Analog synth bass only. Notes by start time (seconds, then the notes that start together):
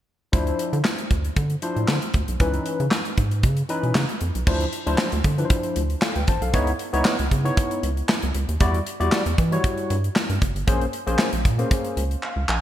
0.33 D2
0.73 D3
1.11 D2
1.37 D3
1.76 A2
1.89 D3
2.14 D2
2.28 B1
2.40 C#2
2.80 C#3
3.18 G#2
3.44 C#3
3.83 B2
3.95 C#3
4.21 F2
4.35 B1
4.47 D2
4.87 D2
5.13 D2
5.24 D3
5.76 D2
6.16 D2
6.28 A1
6.41 B1
6.54 C#2
6.94 C#2
7.19 C#2
7.32 C#3
7.83 C#2
8.23 C#2
8.35 C#2
8.49 D#2
8.61 E2
9.00 E2
9.26 E2
9.38 E3
9.90 G2
10.29 G2
10.42 F#1
10.55 G1
10.68 A#1
11.07 A#1
11.33 A#1
11.45 A#2
11.97 C#2
12.36 C#2
12.49 A#1